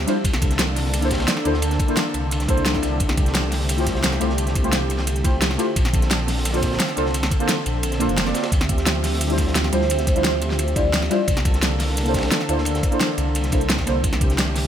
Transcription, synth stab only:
0.06 G3 D4 E4 F4 C5
1.00 A#3 D4 E4 A4
1.05 C5
1.44 A#3 D4 E4 A4 C5
1.87 A#3 D4 E4 A4 C5
2.47 A#3 D4 E4 A4 C5
2.73 A#3 D4 E4 A4 D5
3.75 A3 E4 F4 G4
3.80 C5
4.20 A3 E4 F4 G4 C5
4.63 A3 E4 F4 G4 C5
5.23 A3 E4 F4 G4 C5
5.57 A3 E4 F4 G4 C5
6.51 A#3 D4 F4 A4
6.56 C5
6.96 A#3 D4 F4 A4 C5
7.39 A#3 D4 F4 A4 C5
7.99 A#3 D4 F4 A4 C5
8.25 A#3 D4 F4 A4 D5
9.27 G3 D4 E4 F4
9.32 C5
9.71 G3 D4 E4 F4 C5
10.15 G3 D4 E4 F4 C5
10.75 G3 D4 E4 F4 C5
11.09 G3 D4 E4 F4 C5
12.03 A#3 D4 E4 A4
12.08 C5
12.48 A#3 D4 E4 A4 C5
12.91 A#3 D4 E4 A4 C5
13.51 A#3 D4 E4 A4 C5
13.85 A#3 D4 E4 A4 C5

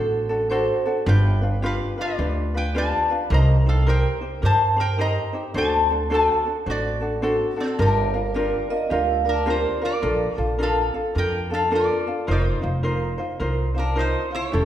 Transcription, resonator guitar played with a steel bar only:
Already playing: F#4 C5
1.09 B4 G5
1.66 B4 F5
2.01 F4 D5
2.57 B4 G5
2.78 D5 A5
3.34 D#5 A#5
3.69 A4 F5
3.89 A#4 G5
4.45 C5 A5
4.80 A#4 G5
5.01 D#5 A#5
5.57 C5 A5
6.14 A4 F#5
6.70 F#4 D5
7.60 C4 A4
7.81 D4 A#4
9.08 A4
9.29 D4 A#4
9.50 F4 C5
9.85 F4 D5
10.38 C5
10.63 A4 F5
11.18 A#4 G5
11.54 A4 F5
11.75 F4 D5
12.31 D#4 C#5
12.49 C5
13.78 D4 A#4
13.99 D#4 C5
14.35 E4 C#5

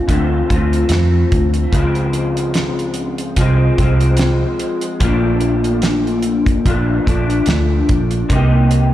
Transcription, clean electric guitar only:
Already playing: C4 F4
0.08 D3 A3 C4 F4
0.49 A3 C4 F4
1.72 C#3 F3
1.77 G#3 C4
3.38 F3 G#3 C4
3.79 F3 G#3 C4
5.00 A#2 F3 A3
5.06 D4
6.66 A#2 F3 A3 D4
7.06 F3 A3 D4
8.29 C3 A#3
8.33 D#4 G4

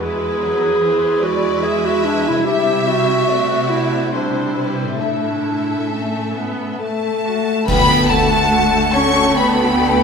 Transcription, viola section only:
0.02 G#3 E4
0.44 F#3
0.82 E3 E4
1.23 G#3
2.45 G3 E4
3.29 A3 F#4
4.14 G3 E4
4.57 G3
5.00 A3 E4
5.91 A3
6.35 B3
6.81 A3
7.25 F#4
7.69 D3 A3

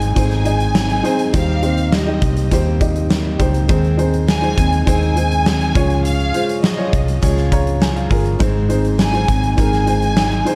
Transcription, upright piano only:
Already playing: G#2 D#4 G#4 C5 D#5
0.15 D#4 G#4 C5
0.45 D#4 G#4 D#5
1.03 D#4 G#4 C5
1.33 D#3 D#4 G4 C5
1.62 D#4 G4 C5
2.06 D#4 G4 D#5
2.51 D#4 G4 C5
2.80 D#4 G4 D#5
3.39 D#4 G4 C5
3.68 D#3 D#4 G#4 C5
3.97 D#4 G#4 C5
4.42 D#4 G#4 C5
4.86 D#4 G#4 C5
5.15 D#4 G#4 C5
5.75 C#3 F4 G#4 C#5
6.33 F4 G#4 C5
6.77 F4 G#4 C#5
7.22 F4 G#4 C#5
7.51 F4 G#4 C#5 A#5
7.81 G#5
7.96 F5
8.10 F4 G#4 A#4
8.39 G#2 D#4 G#4 C5
8.69 D#4 G#4 C5
9.13 D#4 G#4 C5
9.57 D#4 G#4 A#4
9.86 D#4 G#4 C5
10.45 D#4 G#4 C5

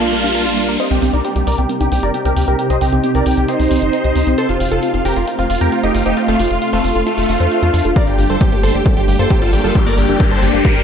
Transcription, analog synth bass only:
Already playing: A#1
0.91 C2
1.02 C2
1.13 C2
1.36 C2
1.47 C2
1.58 C2
1.81 C2
1.92 C2
2.03 G1
2.25 C2
2.36 D2
2.48 C2
2.70 C2
2.81 C2
2.92 C2
3.15 C2
3.26 C2
3.37 C2
3.60 C2
3.71 C2
3.82 G1
4.04 C2
4.16 D2
4.27 C2
4.49 F1
4.60 F1
4.72 F1
4.94 F1
5.05 F1
5.16 F1
5.39 F1
5.50 F1
5.61 F2
5.83 F1
5.95 G1
6.06 F1
6.28 F1
6.39 F1
6.51 F1
6.73 F1
6.84 F1
6.95 F1
7.18 F1
7.29 F1
7.40 F2
7.62 F2
7.74 F2
7.85 F1
8.07 G1
8.18 G1
8.30 G1
8.52 G1
8.63 G1
8.74 G1
8.97 G1
9.08 G1
9.19 G2
9.42 G1
9.53 A1
9.64 G1
9.86 G1
9.98 G1
10.09 G1
10.31 G1
10.42 G1
10.54 G1
10.76 G1

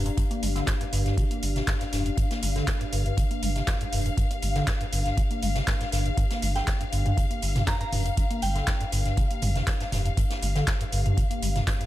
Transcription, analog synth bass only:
Already playing: F1
0.43 G1
0.93 G1
1.43 G1
1.93 F1
2.43 G1
2.93 G1
3.42 G1
3.92 F1
4.42 G1
4.92 G1
5.42 G1
5.93 G1
6.43 G1
6.93 G1
7.43 G1
7.93 F1
8.43 G1
8.93 G1
9.43 G1
9.92 F1
10.42 G1
10.92 G1
11.42 G1

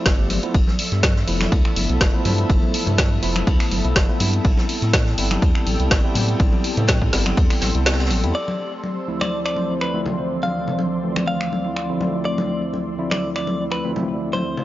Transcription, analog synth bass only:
0.06 G1
0.54 G1
0.92 G2
1.28 F1
1.52 D2
1.76 G1
1.89 B1
2.01 G1
2.25 G2
2.50 G1
2.87 G2
3.23 F1
3.47 D2
3.71 G1
3.85 B1
3.96 G1
4.20 G2
4.45 A1
4.82 A2
5.18 G1
5.42 E2
5.67 A1
5.80 C2
5.91 A1
6.15 A2
6.40 A1
6.77 A2
7.13 G1
7.37 E2
7.62 A1
7.75 C2
8.11 A1
8.24 E2

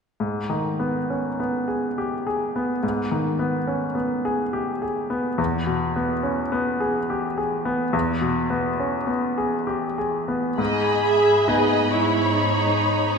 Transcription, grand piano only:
0.20 G#2
0.50 D#3
0.79 B3
1.10 C#4
1.40 B3
1.68 G#4
1.98 G4
2.27 G#4
2.56 B3
2.83 G#2
3.12 D#3
3.39 B3
3.67 C#4
3.95 B3
4.25 G#4
4.53 G4
4.82 G#4
5.10 B3
5.38 E2
5.67 B2
5.96 B3
6.23 C#4
6.52 B3
6.80 G#4
7.10 G4
7.38 G#4
7.65 B3
7.93 E2
8.21 B2
8.50 B3
8.80 C#4
9.07 B3
9.38 G#4
9.67 G4
9.98 G#4
10.28 B3
10.58 G#2
11.48 B3 D#4 G#4

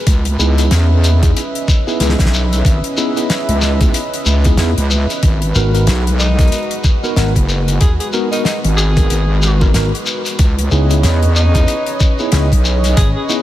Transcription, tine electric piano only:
0.39 B3 D#4 E4 G#4
0.58 B3 D#4 E4 G#4
1.23 B3 D#4 E4 G#4
1.87 B3 D#4 E4 G#4
2.01 B3 D#4 E4 G#4
2.97 B3 D#4 E4 G#4
3.17 B3 D#4 E4 G#4
3.81 B3 D#4 E4 G#4
4.46 B3 D#4 E4 G#4
4.59 B3 D#4 E4 G#4
5.55 B3 D#4 F#4 A#4
5.74 B3 D#4 F#4 A#4
6.39 B3 D#4 F#4 A#4
7.03 B3 D#4 F#4 A#4
7.17 B3 D#4 F#4 A#4
8.13 B3 D#4 F#4 A#4
8.33 B3 D#4 F#4 A#4
8.97 B3 D#4 F#4 A#4
9.62 B3 D#4 F#4 A#4
9.75 B3 D#4 F#4 A#4
10.71 B3 D#4 E4 G#4
10.90 B3 D#4 E4 G#4
11.55 B3 D#4 E4 G#4
12.20 B3 D#4 E4 G#4
12.33 B3 D#4 E4 G#4
13.29 B3 D#4 E4 G#4

